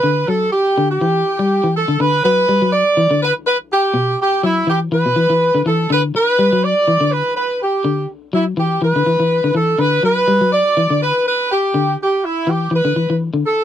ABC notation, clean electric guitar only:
X:1
M:4/4
L:1/16
Q:"Swing 16ths" 1/4=123
K:Em
V:1 name="Clean electric guitar" clef=bass
D,2 F,2 z2 D,2 E,2 z G,2 E,2 D, | D,2 F,2 G, F,2 z E, D,2 z4 z | B,,2 z2 F,2 E,2 E, B,, E, E,2 D, E,2 | D,2 z2 G, F,2 z E, D,2 z4 z |
D,2 z2 F,2 E,2 E, D, E, E,2 D, E,2 | D,2 F,2 G, F,2 z E, D,2 z4 z | D,2 z4 E,2 E, D, E, E,2 D, z2 |]